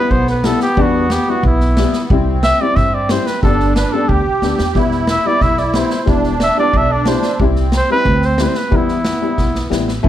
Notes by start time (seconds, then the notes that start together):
Already playing: G3 B3 E4 B4
0.11 B1 C5, kick
0.27 B4, snare
0.44 G3 B3 E4 A4, snare
0.60 G4, snare
0.77 E2 G3 B3 D4, kick
0.82 F#4
1.10 G4, snare
1.29 G3 B3 E4 F#4
1.43 B1 E4, kick
1.60 snare
1.77 G3 B3 E4, snare
1.93 snare
2.04 B3
2.10 C2 G3 C4 E4, kick
2.43 E5, snare
2.61 G3 C4 E4 D5
2.76 G2 E5, kick, snare
2.94 D5
3.09 G3 C4 E4 C5, snare
3.26 B4, snare
3.43 G1 G3 B3 D4 A4, kick, snare
3.60 snare
3.76 B4, snare
3.92 G3 B3 D4 A4
4.09 D2 G4, kick
4.26 B1
4.42 D2 G3 B3 D4, snare
4.59 E2, snare
4.75 E1 G3 B3 E4, kick, snare
4.91 snare
5.07 E5, snare
5.25 G3 B3 E4 D5
5.41 B1 E5, kick, snare
5.57 D5, snare
5.74 G3 B3 E4 C5, snare
5.90 snare
6.06 E1 G3 B3 D4 E4, kick, snare
6.24 snare
6.40 E5, snare
6.57 G3 B3 E4 D5
6.73 B1 E5, kick
6.92 D5
7.06 G3 B3 E4 C5, snare
7.22 snare
7.39 C2 G3 C4 E4, kick
7.56 snare
7.72 snare
7.77 C5
7.90 G3 C4 E4 B4
8.05 D2, kick
8.22 C5, snare
8.38 G3 C4 E4, snare
8.43 B4
8.48 C5
8.54 B4, snare
8.66 A#3
8.71 E2 G3 B3 E4, kick
8.77 E4
8.88 snare
9.05 snare
9.22 G3 B3 E4
9.38 B1, kick, snare
9.55 snare
9.70 A1 G3 B3 E4, snare
9.88 snare
10.03 A1 A3 B3 C4 E4, kick